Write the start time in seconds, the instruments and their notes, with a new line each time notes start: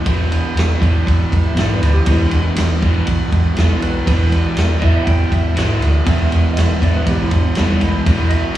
Already playing: tonewheel organ E4
0.04 picked electric bass E1, overdriven electric guitar E2 B2 E3, tonewheel organ E3 G#3 B3, kick, ride
0.32 ride
0.55 picked electric bass E1, ride
0.59 snare
0.79 picked electric bass E1, overdriven electric guitar E2 B2 E3, kick, ride
1.07 picked electric bass E1, kick, ride
1.31 picked electric bass E1, tonewheel organ E3 G#3 B3, kick, ride
1.42 tonewheel organ E5
1.55 picked electric bass G#1, overdriven electric guitar E2 B2 E3, snare, ride
1.61 tonewheel organ D5
1.76 tonewheel organ B4
1.81 picked electric bass D2, ride
1.94 tonewheel organ G4
2.06 picked electric bass E1, overdriven electric guitar E2 B2 E3, tonewheel organ E3, kick, ride
2.10 tonewheel organ G#3 B3 E4
2.26 tonewheel organ D4
2.31 picked electric bass E1, ride
2.42 tonewheel organ B3
2.54 picked electric bass E1, tonewheel organ A#3, ride
2.58 tonewheel organ B3, snare
2.82 picked electric bass E1, overdriven electric guitar E2 B2 E3, kick, ride
3.07 picked electric bass B1, kick, ride
3.31 picked electric bass E1, tonewheel organ E3 G#3 B3, kick, ride
3.57 picked electric bass E1, overdriven electric guitar E2 B2 E3, snare, ride
3.82 picked electric bass B1, tonewheel organ B4, ride
4.06 picked electric bass E1, overdriven electric guitar E2 B2 E3, kick, ride
4.30 tonewheel organ E3 G#3 B3 D5, ride
4.57 picked electric bass E1, snare, ride
4.80 picked electric bass E1, overdriven electric guitar E2 B2 E3, tonewheel organ D#5, kick, ride
4.84 tonewheel organ E5
5.03 picked electric bass E1, tonewheel organ F#5, kick, ride
5.08 tonewheel organ G5
5.32 picked electric bass E1, tonewheel organ E5, kick, ride
5.55 picked electric bass G#1, overdriven electric guitar E2 B2 E3, snare, ride
5.80 picked electric bass D2, ride
6.04 picked electric bass E1, overdriven electric guitar E2 B2 E3, tonewheel organ E3 G#3, kick, ride
6.09 tonewheel organ B3
6.31 picked electric bass E1, ride
6.53 picked electric bass E1, tonewheel organ D#5 E5, ride
6.59 snare
6.81 picked electric bass E1, overdriven electric guitar E2 B2 E3, tonewheel organ D5, kick, ride
6.96 tonewheel organ B4
7.06 picked electric bass B1, tonewheel organ E3 G#3 B3 G4, kick, ride
7.20 tonewheel organ E4
7.31 picked electric bass E1, tonewheel organ D4, kick, ride
7.44 tonewheel organ B3
7.55 picked electric bass E1, overdriven electric guitar E2 B2, tonewheel organ G3, snare, ride
7.59 overdriven electric guitar E3
7.81 picked electric bass B1, tonewheel organ G#3, ride
8.06 picked electric bass E1, overdriven electric guitar E2 B2 E3, kick, ride
8.29 tonewheel organ D#5, ride
8.33 tonewheel organ E5